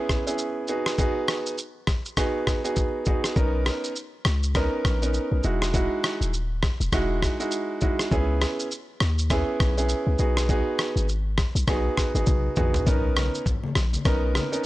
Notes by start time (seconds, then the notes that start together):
Already playing: B3 C#4 E4 G#4
0.09 kick, cross-stick, shaker
0.27 B3 C#4 E4 G#4, shaker
0.38 shaker
0.68 B3 D#4 F#4 G#4, shaker
0.86 cross-stick, shaker
0.98 B3 D#4 F#4 G#4, kick, shaker
1.28 cross-stick, shaker
1.46 shaker
1.58 shaker
1.87 kick, cross-stick, shaker
2.05 shaker
2.17 B3 D#4 F#4 G#4, kick, cross-stick, shaker
2.47 kick, cross-stick, shaker
2.64 B3 D#4 F#4 G#4, shaker
2.76 kick, shaker
3.05 B3 D#4 F#4 G#4, kick, shaker
3.24 cross-stick, shaker
3.36 B1 B3 C#4 D#4 A#4, kick, shaker
3.66 cross-stick, shaker
3.84 shaker
3.96 shaker
4.25 C#2, cross-stick, shaker
4.43 shaker
4.55 B3 C#4 D#4 A#4, kick, cross-stick, shaker
4.85 A#1, kick, cross-stick, shaker
5.02 B3 C#4 D#4 A#4, shaker
5.14 shaker
5.32 B1
5.43 E1 G#3 D#4 E4 F#4, shaker
5.62 cross-stick, shaker
5.74 G#3 D#4 E4 F#4, kick, shaker
6.04 cross-stick, shaker
6.21 D#1, shaker
6.34 shaker
6.63 kick, cross-stick, shaker
6.80 E1, shaker
6.92 E1 G#3 D#4 E4 F#4, kick, cross-stick, shaker
7.23 kick, cross-stick, shaker
7.40 G#3 D#4 E4 F#4, shaker
7.51 shaker
7.81 G#3 D#4 E4 F#4, kick, shaker
7.99 cross-stick, shaker
8.11 C#2 B3 C#4 E4 G#4, kick, shaker
8.41 cross-stick, shaker
8.60 shaker
8.71 shaker
9.00 D#2, cross-stick, shaker
9.19 shaker
9.30 B3 C#4 E4 G#4, kick, cross-stick, shaker
9.60 B1, kick, cross-stick, shaker
9.77 B3 C#4 E4 G#4, shaker
9.89 shaker
10.07 C#2
10.19 B1 B3 D#4 F#4 G#4, shaker
10.37 cross-stick, shaker
10.49 B3 D#4 F#4 G#4, kick, shaker
10.79 cross-stick, shaker
10.96 G#1, shaker
11.09 shaker
11.38 kick, cross-stick, shaker
11.55 B1, shaker
11.68 B1 B3 D#4 F#4 G#4, kick, cross-stick, shaker
11.97 kick, cross-stick, shaker
12.15 G#1 B3 D#4 F#4 G#4, shaker
12.27 B1, kick, high tom, shaker
12.56 A#1 B3 D#4 F#4 G#4, mid tom, shaker
12.74 floor tom, shaker
12.86 B1 B3 C#4 D#4 A#4, kick, low conga, shaker
13.16 cross-stick, high conga, shaker
13.35 shaker
13.46 kick, low conga, shaker
13.64 high conga
13.75 A#1, cross-stick, shaker
13.93 high conga, shaker
14.05 B1 B3 C#4 D#4 A#4, kick, cross-stick, shaker
14.35 cross-stick, high conga, shaker
14.52 B3 C#4 D#4 A#4, shaker